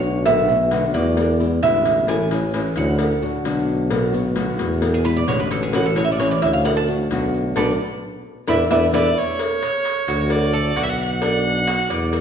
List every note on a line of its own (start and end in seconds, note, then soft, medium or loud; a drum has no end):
0.00 0.88 B1 loud
0.00 0.25 D3 medium
0.00 0.25 A3 medium
0.00 0.25 D4 medium
0.00 0.25 F#4 medium
0.00 0.23 C#5 medium
0.00 maracas soft
0.26 0.48 B2 medium
0.26 0.48 D3 medium
0.26 0.48 A3 medium
0.26 0.48 B3 medium
0.26 0.47 F#4 medium
0.26 0.90 E5 loud
0.26 cowbell loud
0.26 maracas medium
0.48 0.70 A3 soft
0.48 0.71 B3 soft
0.48 0.71 F#4 soft
0.48 maracas medium
0.71 0.93 B2 medium
0.71 0.93 D3 medium
0.71 0.94 A3 medium
0.71 0.94 B3 medium
0.71 0.94 F#4 medium
0.71 cowbell medium
0.71 maracas medium
0.94 1.59 E2 loud
0.94 1.17 A3 soft
0.94 1.17 B3 soft
0.94 1.17 F#4 soft
0.94 1.59 D5 medium
0.94 cowbell medium
0.94 maracas soft
1.17 muted nylon-string guitar stroke medium
1.17 cowbell medium
1.17 maracas medium
1.40 1.62 G#3 soft
1.40 1.62 B3 soft
1.40 1.62 E4 medium
1.40 maracas medium
1.62 2.71 A1 medium
1.62 2.07 B2 medium
1.62 2.08 D3 medium
1.62 2.08 G#3 medium
1.62 2.08 B3 medium
1.62 2.08 E4 medium
1.62 2.05 E5 medium
1.62 cowbell medium
1.62 maracas medium
1.85 cowbell medium
1.85 maracas soft
2.08 2.30 E3 medium
2.08 2.30 A3 medium
2.08 2.31 C#4 medium
2.08 2.30 E4 medium
2.08 2.73 G#5 medium
2.08 cowbell loud
2.08 maracas medium
2.31 2.53 A3 soft
2.31 2.54 C#4 soft
2.31 2.53 E4 medium
2.31 cowbell medium
2.31 maracas medium
2.53 2.76 E3 medium
2.53 2.76 A3 medium
2.53 2.77 C#4 medium
2.53 2.76 E4 medium
2.53 cowbell medium
2.53 maracas medium
2.76 3.15 D2 loud
2.76 2.99 A3 soft
2.76 3.00 C#4 soft
2.76 2.99 E4 medium
2.76 3.42 F#5 medium
2.76 cowbell medium
2.76 maracas soft
2.99 muted nylon-string guitar stroke medium
2.99 cowbell loud
2.99 maracas medium
3.22 3.44 A3 soft
3.22 3.45 D4 soft
3.22 3.44 F#4 medium
3.22 maracas medium
3.45 4.53 B1 medium
3.45 3.90 D3 medium
3.45 3.90 A3 medium
3.45 3.90 D4 medium
3.45 3.91 F#4 medium
3.45 cowbell medium
3.45 maracas medium
3.68 maracas soft
3.90 4.13 B2 medium
3.90 4.13 D3 medium
3.90 4.13 A3 medium
3.90 4.13 B3 medium
3.90 4.11 F#4 medium
3.90 cowbell loud
3.90 maracas medium
4.13 4.35 A3 soft
4.13 4.35 B3 soft
4.13 4.35 F#4 medium
4.13 maracas medium
4.35 4.58 B2 medium
4.35 4.58 D3 medium
4.35 4.59 A3 medium
4.35 4.58 B3 medium
4.35 4.57 F#4 medium
4.35 cowbell medium
4.35 maracas medium
4.58 5.24 E2 loud
4.58 4.82 A3 soft
4.58 4.81 B3 soft
4.58 4.81 F#4 medium
4.58 cowbell medium
4.58 maracas soft
4.82 muted nylon-string guitar stroke medium
4.82 cowbell medium
4.82 maracas medium
4.94 5.04 G#4 medium
5.05 5.27 G#3 soft
5.05 5.27 B3 soft
5.05 5.27 E4 medium
5.05 5.16 B4 loud
5.05 maracas medium
5.16 5.28 D5 medium
5.27 6.36 A1 medium
5.27 5.72 B2 medium
5.27 5.72 D3 medium
5.27 5.73 G#3 medium
5.27 5.73 B3 medium
5.27 5.73 E4 medium
5.27 5.39 C#5 medium
5.27 cowbell medium
5.27 maracas medium
5.40 5.51 B4 medium
5.51 5.62 A4 medium
5.51 cowbell medium
5.51 maracas soft
5.63 5.74 G#4 medium
5.73 5.95 E3 medium
5.73 5.95 A3 medium
5.73 5.96 C#4 medium
5.73 5.95 E4 medium
5.73 5.85 F#4 medium
5.73 cowbell loud
5.73 maracas medium
5.86 5.96 A4 medium
5.96 6.18 A3 soft
5.96 6.19 C#4 medium
5.96 6.18 E4 medium
5.96 6.04 C#5 medium
5.96 cowbell medium
5.96 maracas medium
6.05 6.12 E5 loud
6.12 6.19 D5 medium
6.19 6.41 E3 medium
6.19 6.41 A3 medium
6.19 6.42 C#4 medium
6.19 6.41 E4 medium
6.19 6.31 C#5 medium
6.19 cowbell medium
6.19 maracas medium
6.31 6.42 D5 medium
6.42 7.07 D2 loud
6.42 6.65 A3 soft
6.42 6.65 C#4 medium
6.42 6.64 E4 soft
6.42 6.53 E5 medium
6.42 cowbell medium
6.42 maracas soft
6.53 6.64 F5 medium
6.65 6.76 F#5 medium
6.65 muted nylon-string guitar stroke medium
6.65 cowbell loud
6.65 maracas medium
6.77 6.83 A5 loud
6.88 7.10 A3 soft
6.88 7.10 D4 medium
6.88 7.10 F#4 medium
6.88 maracas medium
7.10 7.53 B1 loud
7.10 7.55 D3 medium
7.10 7.56 A3 medium
7.10 7.55 D4 medium
7.10 7.56 F#4 medium
7.10 cowbell medium
7.10 maracas medium
7.33 maracas soft
7.56 7.74 B1 loud
7.56 7.71 A3 medium
7.56 7.71 B3 loud
7.56 7.71 D4 loud
7.56 7.71 A4 loud
7.56 7.71 B4 medium
7.56 7.71 D5 medium
7.56 cowbell loud
7.56 maracas loud
8.47 8.65 E2 loud
8.47 8.63 B3 medium
8.47 8.62 D4 loud
8.47 8.63 E4 loud
8.47 8.63 B4 medium
8.47 8.63 D5 medium
8.47 8.63 E5 medium
8.47 cowbell loud
8.47 maracas loud
8.70 8.88 E2 loud
8.70 8.85 B3 loud
8.70 8.85 D4 loud
8.70 8.85 E4 loud
8.70 8.86 B4 loud
8.70 8.86 D5 medium
8.70 8.85 E5 loud
8.70 cowbell medium
8.70 maracas loud
8.93 9.10 E2 loud
8.93 9.08 B3 loud
8.93 9.08 D4 loud
8.93 9.08 E4 loud
8.93 9.08 B4 loud
8.93 9.08 D5 loud
8.93 9.19 D5 medium
8.93 9.08 E5 medium
8.93 cowbell loud
8.93 maracas loud
9.18 10.33 C#5 loud
9.39 cowbell loud
9.39 maracas medium
9.62 10.07 C#5 medium
9.62 cowbell medium
9.62 maracas medium
9.85 cowbell medium
9.85 maracas medium
10.07 10.72 D2 loud
10.07 10.52 F#4 medium
10.07 cowbell medium
10.07 maracas soft
10.30 10.80 D5 loud
10.30 cowbell loud
10.30 maracas medium
10.53 10.75 A4 medium
10.53 maracas medium
10.75 11.84 B1 medium
10.75 11.20 F#4 medium
10.75 10.85 F#5 loud
10.75 cowbell medium
10.75 maracas medium
10.83 10.90 E5 loud
10.89 11.00 F#5 loud
10.99 12.21 F#5 loud
10.99 maracas soft
11.21 11.66 D4 medium
11.21 cowbell loud
11.21 maracas medium
11.67 11.89 F#4 medium
11.67 cowbell medium
11.67 maracas medium
11.90 12.21 E2 loud
11.90 12.21 D5 medium
11.90 cowbell medium
11.90 maracas soft
12.13 cowbell medium
12.13 maracas medium